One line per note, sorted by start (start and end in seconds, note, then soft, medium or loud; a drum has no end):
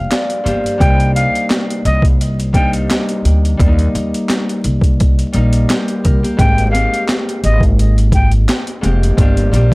0.00 0.42 G2 medium
0.00 0.43 F3 medium
0.00 0.45 A#3 medium
0.00 0.46 D4 medium
0.00 0.47 G4 medium
0.00 1.42 F5 medium
0.00 0.96 G5 medium
0.00 0.45 A#5 medium
0.11 0.88 D5 medium
0.11 snare loud
0.11 clap loud
0.11 closed hi-hat loud
0.30 closed hi-hat soft
0.44 0.61 G1 medium
0.44 0.85 G2 medium
0.44 0.85 F3 medium
0.44 0.77 A#3 medium
0.44 0.77 D4 medium
0.44 0.77 G4 medium
0.44 2.44 C5 medium
0.44 closed hi-hat medium
0.66 closed hi-hat medium
0.78 1.25 C2 loud
0.78 2.51 C3 medium
0.78 2.52 G3 medium
0.78 2.54 A#3 medium
0.78 2.55 D4 medium
0.78 2.56 D#4 medium
0.78 1.12 G5 medium
0.78 kick loud
0.78 closed hi-hat loud
1.00 closed hi-hat medium
1.15 1.47 F5 medium
1.15 closed hi-hat medium
1.35 closed hi-hat medium
1.50 snare loud
1.50 clap medium
1.50 closed hi-hat medium
1.70 closed hi-hat medium
1.85 2.86 C2 loud
1.85 2.02 D#5 medium
1.85 closed hi-hat medium
2.02 kick loud
2.02 closed hi-hat medium
2.21 closed hi-hat medium
2.40 closed hi-hat soft
2.53 3.64 C3 medium
2.53 3.56 G3 medium
2.53 3.59 A#3 medium
2.53 3.60 D4 medium
2.53 3.67 D#4 medium
2.53 2.71 G5 medium
2.53 kick medium
2.53 closed hi-hat medium
2.73 closed hi-hat medium
2.90 snare loud
2.90 clap loud
2.90 closed hi-hat loud
3.09 closed hi-hat soft
3.25 3.54 D2 medium
3.25 closed hi-hat medium
3.45 closed hi-hat medium
3.57 3.89 D#2 loud
3.57 5.31 G3 medium
3.57 5.34 A#3 medium
3.57 3.67 D4 medium
3.57 kick loud
3.57 closed hi-hat loud
3.67 5.36 D#4 loud
3.79 closed hi-hat soft
3.95 4.10 D#2 loud
3.95 closed hi-hat medium
4.14 closed hi-hat medium
4.29 snare loud
4.29 clap loud
4.29 closed hi-hat medium
4.49 closed hi-hat medium
4.64 5.22 C2 medium
4.64 closed hi-hat medium
4.81 kick loud
4.81 closed hi-hat medium
5.00 kick medium
5.00 closed hi-hat medium
5.19 closed hi-hat medium
5.32 5.63 A#1 medium
5.32 6.44 G3 medium
5.32 5.69 A#3 medium
5.32 5.70 D#4 loud
5.32 closed hi-hat medium
5.53 closed hi-hat medium
5.70 6.23 A#3 medium
5.70 6.23 G4 medium
5.70 snare loud
5.70 clap loud
5.70 closed hi-hat loud
5.88 closed hi-hat soft
6.04 6.20 C2 loud
6.04 8.16 A#4 medium
6.04 kick medium
6.04 closed hi-hat medium
6.23 6.38 A#3 medium
6.23 6.40 G4 medium
6.23 closed hi-hat medium
6.37 6.83 G#1 loud
6.37 6.70 G#2 medium
6.37 6.71 G#3 medium
6.37 6.70 A#3 medium
6.37 6.70 C4 medium
6.37 6.71 G4 medium
6.37 6.70 G5 loud
6.37 kick loud
6.37 closed hi-hat loud
6.58 closed hi-hat medium
6.71 8.80 G#2 medium
6.71 8.81 G#3 medium
6.71 8.82 A#3 medium
6.71 8.84 C4 medium
6.71 8.84 G4 medium
6.71 7.04 F5 medium
6.71 closed hi-hat medium
6.94 closed hi-hat medium
7.08 snare loud
7.08 clap medium
7.08 closed hi-hat medium
7.29 closed hi-hat medium
7.44 8.44 G#1 medium
7.44 7.61 D#5 medium
7.44 closed hi-hat medium
7.61 kick loud
7.61 closed hi-hat medium
7.79 closed hi-hat medium
7.98 closed hi-hat medium
8.12 8.31 G5 medium
8.12 kick medium
8.12 closed hi-hat medium
8.32 closed hi-hat medium
8.49 snare loud
8.49 clap loud
8.49 closed hi-hat loud
8.67 closed hi-hat soft
8.81 9.12 F1 medium
8.81 9.23 G#2 medium
8.81 9.23 G#3 medium
8.81 9.14 A#3 medium
8.81 9.14 C4 medium
8.81 9.15 G4 medium
8.81 closed hi-hat medium
9.03 closed hi-hat medium
9.17 9.47 G1 loud
9.17 9.50 G2 medium
9.17 9.51 F3 medium
9.17 9.49 A#3 medium
9.17 9.50 D4 medium
9.17 9.50 G4 loud
9.17 kick loud
9.17 closed hi-hat loud
9.37 closed hi-hat soft
9.52 9.68 A#1 loud
9.52 9.74 G2 medium
9.52 9.74 F3 medium
9.52 9.74 A#3 medium
9.52 9.74 D4 medium
9.52 9.74 G4 medium
9.52 closed hi-hat medium